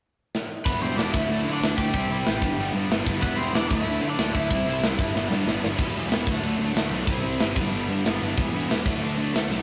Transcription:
0.35 snare
0.65 picked electric bass E1, distorted electric guitar E3 G3 B3 E4, overdriven electric guitar B3 B4, kick, open hi-hat
0.81 picked electric bass E1, distorted electric guitar E3 G3 B3 E4, overdriven electric guitar C4 C5
0.97 picked electric bass E1, distorted electric guitar E3 G3 B3 E4, overdriven electric guitar D4 D5, snare, open hi-hat
1.12 picked electric bass D2, distorted electric guitar D3 F#3, overdriven electric guitar E4 E5, kick
1.16 distorted electric guitar A3 D4
1.29 picked electric bass D2, distorted electric guitar D3 F#3 A3 D4, open hi-hat
1.44 picked electric bass D3, distorted electric guitar D3 F#3 A3
1.48 distorted electric guitar D4
1.53 overdriven electric guitar D4 D5
1.61 picked electric bass D2, distorted electric guitar A3 D4, snare, open hi-hat
1.65 distorted electric guitar D3 F#3
1.77 picked electric bass D2, distorted electric guitar D3 F#3 A3, overdriven electric guitar G3 G4, kick
1.81 distorted electric guitar D4
1.94 picked electric bass C2, distorted electric guitar C3 G3 C4 E4, kick, open hi-hat
2.10 picked electric bass C2, distorted electric guitar C3 G3 C4 E4
2.26 picked electric bass A1, distorted electric guitar C3 G3 C4 E4, snare, open hi-hat
2.42 picked electric bass G1, distorted electric guitar G2 D3 G3 B3 D4, kick
2.57 picked electric bass G1, distorted electric guitar D3 G3 B3 D4, open hi-hat
2.61 distorted electric guitar G2
2.73 picked electric bass G2, distorted electric guitar G2 D3 G3
2.77 distorted electric guitar B3 D4
2.89 picked electric bass G1, distorted electric guitar B3 D4, snare, open hi-hat
2.93 distorted electric guitar G2 D3 G3
3.06 picked electric bass G1, distorted electric guitar G2 D3 G3 B3 D4, kick
3.22 picked electric bass E1, distorted electric guitar E3 G3 B3 E4, overdriven electric guitar B3 B4, kick, open hi-hat
3.37 picked electric bass E1, distorted electric guitar E3 B3 E4, overdriven electric guitar C4 C5
3.41 distorted electric guitar G3
3.53 picked electric bass E1, distorted electric guitar E3 G3 B3, overdriven electric guitar D4 D5, snare, open hi-hat
3.57 distorted electric guitar E4
3.69 picked electric bass D2, distorted electric guitar D3 F#3, overdriven electric guitar E4 E5, kick
3.73 distorted electric guitar A3 D4
3.85 picked electric bass D2, distorted electric guitar A3 D4, open hi-hat
3.90 distorted electric guitar D3 F#3
4.01 picked electric bass D3, distorted electric guitar D3 F#3 A3 D4
4.09 overdriven electric guitar D4 D5
4.18 picked electric bass D2, distorted electric guitar D3 F#3 A3 D4, snare, open hi-hat
4.33 picked electric bass D2, distorted electric guitar D3 F#3 A3 D4, overdriven electric guitar E4 E5, kick
4.51 picked electric bass C2, distorted electric guitar C3 G3 C4 E4, kick, open hi-hat
4.66 picked electric bass C2, distorted electric guitar C3 G3 C4 E4
4.82 picked electric bass C2, distorted electric guitar C3 G3 C4 E4, snare, open hi-hat
4.99 picked electric bass G1, distorted electric guitar G2 D3 G3 B3 D4, kick
5.14 picked electric bass G1, distorted electric guitar G2 D3 G3 B3 D4, snare
5.30 picked electric bass G2, distorted electric guitar G2 D3 G3, snare
5.34 distorted electric guitar B3 D4
5.45 picked electric bass G1, distorted electric guitar D4, snare
5.49 distorted electric guitar G2 D3 G3 B3
5.62 picked electric bass G1, distorted electric guitar G2 D3, snare
5.66 distorted electric guitar G3 B3 D4
5.79 picked electric bass E1, distorted electric guitar E3 G3 B3, kick, crash
5.83 distorted electric guitar E4
5.94 picked electric bass E1, distorted electric guitar G3 B3 E4, open hi-hat
5.99 distorted electric guitar E3
6.10 picked electric bass E1, distorted electric guitar E3 G3 B3, snare, open hi-hat
6.14 distorted electric guitar E4
6.27 picked electric bass D2, distorted electric guitar D3 F#3 A3, kick, open hi-hat
6.32 distorted electric guitar D4
6.41 picked electric bass D2, distorted electric guitar D4, open hi-hat
6.46 distorted electric guitar D3 F#3 A3
6.59 picked electric bass D2, distorted electric guitar D3, open hi-hat
6.63 distorted electric guitar F#3 A3 D4
6.74 picked electric bass D2, distorted electric guitar D4, snare, open hi-hat
6.78 distorted electric guitar D3 F#3 A3
6.90 picked electric bass B1, distorted electric guitar D3 F#3 A3, open hi-hat
6.94 distorted electric guitar D4
7.07 picked electric bass C2, distorted electric guitar C3 G3 C4 E4, kick, open hi-hat
7.24 picked electric bass C2, distorted electric guitar G3 C4 E4, open hi-hat
7.28 distorted electric guitar C3
7.40 picked electric bass G1, distorted electric guitar C3 G3 C4 E4, snare, open hi-hat
7.56 picked electric bass G1, distorted electric guitar G2 D3 G3, kick, open hi-hat
7.60 distorted electric guitar B3 D4
7.72 picked electric bass G1, distorted electric guitar G2 D3 G3 B3 D4, open hi-hat
7.89 picked electric bass G2, distorted electric guitar G2 D3 G3 B3 D4, open hi-hat
8.05 picked electric bass G1, distorted electric guitar G2 D3 G3 B3 D4, snare, open hi-hat
8.21 picked electric bass G1, distorted electric guitar G2 D3 G3 B3 D4, open hi-hat
8.37 picked electric bass E1, distorted electric guitar E3 G3 B3 E4, kick, open hi-hat
8.53 picked electric bass E1, distorted electric guitar E3 G3 B3 E4, open hi-hat
8.69 picked electric bass E1, distorted electric guitar E3 G3 B3 E4, snare, open hi-hat
8.86 picked electric bass D2, distorted electric guitar D3 F#3 A3 D4, kick, open hi-hat
9.02 picked electric bass D2, distorted electric guitar D3 F#3 A3 D4, open hi-hat
9.18 picked electric bass D2, distorted electric guitar D3 F#3 A3 D4, open hi-hat
9.34 picked electric bass D2, distorted electric guitar D3 F#3 A3 D4, snare, open hi-hat
9.49 picked electric bass B1, distorted electric guitar D3 F#3 A3 D4, open hi-hat

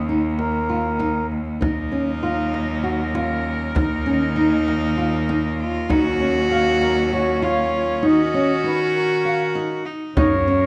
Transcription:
Already playing: cello D#2
0.09 nylon-string guitar D#4
0.38 accordion A#4, frame drum
0.69 nylon-string guitar F4
0.99 nylon-string guitar D#4, frame drum
1.32 frame drum
1.59 cello D#2 D#4, woodwind section A#2 F#3 A#4, nylon-string guitar D#4, frame drum
1.92 nylon-string guitar C#4
2.23 nylon-string guitar F4
2.54 frame drum
2.84 nylon-string guitar F#4
3.15 cello C#4, nylon-string guitar F4, frame drum
3.74 cello D#2 D#4, woodwind section D#3, nylon-string guitar D#4, frame drum
4.06 nylon-string guitar C#4
4.36 nylon-string guitar D#4
4.68 frame drum
4.98 nylon-string guitar F4
5.29 nylon-string guitar D#4, frame drum
5.59 cello F4
5.88 cello D#2 F#4, woodwind section F#3 C#4, nylon-string guitar D#4, frame drum
6.20 nylon-string guitar C#4
6.51 nylon-string guitar F5
6.82 accordion A#4, frame drum
7.13 nylon-string guitar F#4, accordion C#5
7.42 nylon-string guitar F4, cello F4, accordion C#5, frame drum
8.03 woodwind section D#3, nylon-string guitar D#4, cello F#4, accordion D#5
8.34 nylon-string guitar C#4
8.64 nylon-string guitar D#4, accordion B4
8.96 accordion A#4
9.25 nylon-string guitar F5
9.55 nylon-string guitar D#4
9.85 cello D#4
10.15 cello F#2, woodwind section C#3 A#3 A#4, nylon-string guitar D#4, accordion C#5, frame drum
10.48 nylon-string guitar C#4, frame drum

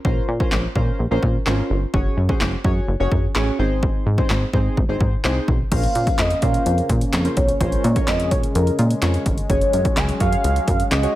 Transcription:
0.05 analog synth bass A#1, synth keys C#4 F4 A#4 C5, kick
0.28 analog synth bass A#2
0.40 synth keys C#4 F4 A#4 C5, kick
0.52 analog synth bass A#1, snare, clap
0.75 analog synth bass A#2, synth keys C#4 F4 A#4 C5, kick
0.99 analog synth bass A#1
1.11 analog synth bass A#1, synth keys C#4 F4 A#4 C5
1.23 analog synth bass A#2, kick
1.46 analog synth bass G#1, synth keys C#4 F4 A#4 C5, snare, clap
1.70 analog synth bass G1
1.93 analog synth bass F#1, synth keys C#4 F#4 G#4 C#5, kick
2.17 analog synth bass F#2
2.29 synth keys C#4 F#4 G#4 C5, kick
2.41 analog synth bass F#1, snare, clap
2.64 analog synth bass F#2, synth keys C#4 F#4 G#4 C#5, kick
2.88 analog synth bass F#1
3.00 analog synth bass F#1, synth keys C#4 F#4 G#4 C#5
3.12 analog synth bass F#2, kick
3.35 analog synth bass A1, synth keys C#4 F#4 G#4 C#5, snare, clap
3.59 analog synth bass G#1, synth keys C4 D#4 G#4 C5
3.83 kick
4.06 analog synth bass G#2
4.18 synth keys C4 D#4 G#4 C5, kick
4.30 analog synth bass G#1, snare, clap
4.53 analog synth bass G#2, synth keys C4 D#4 G#4 C5, kick
4.77 analog synth bass G#1, kick
4.89 analog synth bass G#1, synth keys C4 D#4 G#4 C5
5.00 analog synth bass G#2, kick
5.24 analog synth bass C2, synth keys C4 D#4 G#4 C5, snare, clap
5.48 analog synth bass B1, kick
5.71 analog synth bass A#1, analog synth pad C#3 A#3 C#4, synth keys C#4 F4 A#4 C5, soft synth lead F5, kick, closed hi-hat, crash
5.83 closed hi-hat
5.95 analog synth bass A#2, closed hi-hat
6.07 kick, closed hi-hat
6.18 analog synth bass F2, soft synth lead D#5, snare, clap, closed hi-hat
6.30 closed hi-hat
6.42 analog synth bass A#2, synth keys C#4 F4 A#4 C5, soft synth lead F5, kick, closed hi-hat
6.54 closed hi-hat
6.66 analog synth bass F2, closed hi-hat
6.78 closed hi-hat
6.89 analog synth bass A#2, kick, closed hi-hat
7.01 closed hi-hat
7.13 analog synth bass F2, snare, clap, closed hi-hat
7.25 synth keys C#4 F4 A#4 C5, closed hi-hat
7.37 analog synth bass B1, soft synth lead C#5, kick, closed hi-hat
7.49 closed hi-hat
7.60 analog synth bass A#1, analog synth pad G#3, synth keys C#4 F4 A#4 C5, kick, closed hi-hat
7.72 closed hi-hat
7.84 analog synth bass A#2, closed hi-hat
7.96 synth keys C#4 F4 A#4 C#5, kick, closed hi-hat
8.07 analog synth bass F2, soft synth lead D#5, snare, clap, closed hi-hat
8.20 closed hi-hat
8.31 analog synth bass A#2, soft synth lead C#5, kick, closed hi-hat
8.43 closed hi-hat
8.55 analog synth bass F2, soft synth lead A#4, closed hi-hat
8.67 closed hi-hat
8.79 analog synth bass A#2, closed hi-hat
8.91 closed hi-hat
9.02 analog synth bass F2, synth keys C#4 F4 A#4 C#5, snare, clap, closed hi-hat
9.14 closed hi-hat
9.26 analog synth bass G1, kick, closed hi-hat
9.38 closed hi-hat
9.49 analog synth bass F#1, analog synth pad F#3 C#4, synth keys C#4 F#4 G#4 C#5, soft synth lead C#5, kick, closed hi-hat
9.61 closed hi-hat
9.73 analog synth bass F#2, closed hi-hat
9.85 kick, closed hi-hat
9.97 analog synth bass C#2, soft synth lead G#5, snare, clap, closed hi-hat
10.09 closed hi-hat
10.20 analog synth bass F#2, synth keys C#4 F#4 G#4 C#5, soft synth lead F5, kick, closed hi-hat
10.32 closed hi-hat
10.44 analog synth bass C#2, closed hi-hat
10.56 closed hi-hat
10.68 analog synth bass F#2, kick, closed hi-hat
10.80 closed hi-hat
10.91 analog synth bass C#2, soft synth lead D#5, snare, clap, closed hi-hat
11.03 synth keys C#4 F#4 G#4 C#5, closed hi-hat

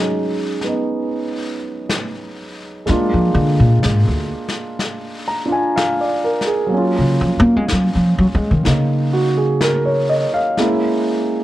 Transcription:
Already playing: grand piano F#3 G#3 C#4 D#4
0.61 grand piano B3, snare
0.67 grand piano D#4
0.95 brush sweep
1.89 brush sweep, snare
2.86 grand piano G#3 A#3 D4, upright bass G#3, brush sweep, snare
2.90 grand piano F4
3.14 upright bass F3
3.35 upright bass D3
3.60 upright bass A#2
3.83 upright bass G#2, brush sweep, snare
4.08 upright bass D2
4.49 snare
4.79 brush sweep, snare
5.28 grand piano A#5
5.45 grand piano D4 F4
5.52 grand piano G#5
5.76 grand piano F5, brush sweep, snare
6.01 grand piano D5
6.24 grand piano A#4
6.41 snare
6.47 grand piano G#4
6.66 grand piano F#3 A#3
6.73 grand piano C#4, brush sweep
6.78 grand piano F4
6.98 upright bass C#3
7.21 upright bass F3
7.39 upright bass A#3
7.56 upright bass G#3
7.68 upright bass F#3, brush sweep, snare
7.95 upright bass F3
8.18 upright bass F#3
8.35 upright bass G#3
8.51 upright bass D#3
8.64 upright bass C#3, grand piano A#3 D#4, brush sweep, snare
9.13 grand piano F#4
9.38 grand piano G#4
9.61 grand piano A#4, brush sweep, snare
9.86 grand piano C#5
10.09 grand piano D#5
10.34 grand piano F5
10.57 grand piano G#3 A#3 C#4 E4, brush sweep, snare

